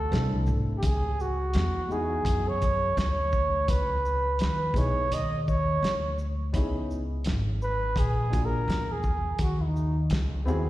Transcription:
0.00 0.13 D2 medium
0.00 0.47 A4 medium
0.10 0.45 C2 loud
0.10 0.82 A3 medium
0.10 0.82 C4 medium
0.10 0.83 D4 medium
0.10 0.84 E4 medium
0.10 0.84 A4 medium
0.10 snare loud
0.10 closed hi-hat medium
0.46 0.81 G#1 medium
0.46 shaker medium
0.78 0.87 G4 medium
0.83 1.51 C#2 loud
0.83 1.23 G#4 medium
0.83 kick loud
0.83 closed hi-hat medium
1.20 1.94 F#4 medium
1.20 shaker soft
1.53 2.22 E2 loud
1.53 snare loud
1.53 closed hi-hat medium
1.88 2.41 G#3 medium
1.88 2.42 B3 medium
1.88 2.42 D#4 medium
1.88 2.43 E4 medium
1.88 2.43 F#4 medium
1.88 shaker medium
1.92 2.50 G#4 loud
2.25 2.93 F#2 medium
2.25 kick loud
2.25 closed hi-hat loud
2.49 2.98 C#5 medium
2.62 kick medium
2.62 closed hi-hat medium
2.62 shaker medium
2.97 3.65 D2 loud
2.97 3.71 C#5 medium
2.97 snare medium
2.97 closed hi-hat medium
3.32 kick medium
3.32 shaker medium
3.68 4.36 C#2 loud
3.68 4.41 B4 loud
3.68 kick loud
3.68 closed hi-hat medium
4.05 shaker medium
4.39 4.73 D#2 loud
4.39 4.79 B4 medium
4.39 snare loud
4.39 closed hi-hat medium
4.74 5.09 B1 loud
4.74 5.02 G#3 medium
4.74 5.02 B3 medium
4.74 5.02 D#4 medium
4.74 5.03 E4 medium
4.74 5.03 G#4 medium
4.74 5.15 C#5 loud
4.74 kick medium
4.74 closed hi-hat soft
4.74 shaker medium
5.11 5.79 D#2 medium
5.11 5.43 D#5 loud
5.11 closed hi-hat medium
5.43 5.50 D#5 medium
5.48 6.19 C#5 medium
5.48 kick medium
5.48 shaker medium
5.83 6.50 D2 medium
5.83 snare medium
5.83 closed hi-hat medium
6.18 shaker medium
6.53 7.27 C#2 loud
6.53 6.97 B3 medium
6.53 6.98 C#4 medium
6.53 6.98 D#4 medium
6.53 6.99 E4 medium
6.53 6.99 G#4 medium
6.53 kick loud
6.53 closed hi-hat medium
6.91 shaker soft
7.24 7.94 G#1 loud
7.24 snare loud
7.24 closed hi-hat medium
7.62 8.00 B4 loud
7.62 shaker medium
7.96 8.64 A#1 loud
7.96 8.47 G#4 loud
7.96 kick loud
7.96 closed hi-hat medium
8.30 8.75 A#3 medium
8.30 8.76 D4 medium
8.30 8.76 F4 medium
8.30 8.76 F#4 medium
8.30 8.77 G#4 medium
8.30 kick medium
8.30 closed hi-hat medium
8.30 shaker medium
8.46 8.94 A#4 medium
8.68 9.36 E2 medium
8.68 snare medium
8.68 closed hi-hat medium
8.92 9.40 G#4 medium
9.03 kick medium
9.03 shaker soft
9.39 10.07 D#2 medium
9.39 9.63 F#4 medium
9.39 kick loud
9.39 closed hi-hat medium
9.61 10.00 D#4 medium
9.61 9.66 E4 soft
9.76 shaker soft
10.10 10.46 C#2 loud
10.10 snare loud
10.10 closed hi-hat medium
10.45 10.70 D#2 medium
10.45 10.70 B3 medium
10.45 10.70 C4 medium
10.45 10.70 E4 medium
10.45 10.70 F#4 medium
10.45 10.70 G#4 loud
10.45 shaker medium

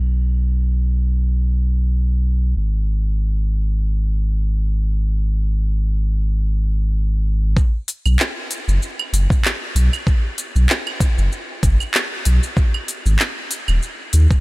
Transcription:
0.00 2.54 B1 medium
2.56 7.54 G#1 medium
7.57 kick loud
7.57 shaker soft
7.88 open hi-hat medium
7.88 shaker medium
8.06 8.17 B1 loud
8.06 claves medium
8.06 shaker soft
8.20 clap loud
8.20 shaker soft
8.51 open hi-hat medium
8.51 shaker medium
8.68 8.79 F#1 medium
8.68 shaker soft
8.82 shaker soft
8.99 claves medium
9.13 9.27 F#1 loud
9.13 open hi-hat medium
9.13 shaker medium
9.30 kick loud
9.30 shaker soft
9.45 clap loud
9.45 shaker soft
9.75 9.89 B1 loud
9.75 open hi-hat medium
9.75 shaker medium
9.93 claves medium
9.93 shaker soft
10.07 kick loud
10.07 shaker soft
10.38 open hi-hat loud
10.38 shaker medium
10.56 10.67 B1 loud
10.56 shaker soft
10.70 clap loud
10.70 shaker soft
10.87 claves medium
11.00 kick loud
11.00 open hi-hat medium
11.00 shaker medium
11.18 11.29 F#1 loud
11.18 shaker soft
11.32 shaker soft
11.63 11.77 F#1 medium
11.63 kick loud
11.63 open hi-hat medium
11.63 shaker medium
11.80 claves medium
11.80 shaker soft
11.94 clap loud
11.94 shaker soft
12.25 12.40 B1 loud
12.25 open hi-hat medium
12.25 shaker medium
12.43 shaker soft
12.57 kick loud
12.57 shaker soft
12.74 claves medium
12.88 open hi-hat medium
12.88 shaker medium
13.06 13.17 G#1 loud
13.06 shaker soft
13.19 clap loud
13.19 shaker soft
13.51 open hi-hat medium
13.51 shaker medium
13.68 13.79 D#1 medium
13.68 claves medium
13.68 shaker soft
13.82 shaker soft
14.13 14.27 D#2 loud
14.13 open hi-hat medium
14.13 shaker medium
14.31 kick loud
14.31 shaker soft

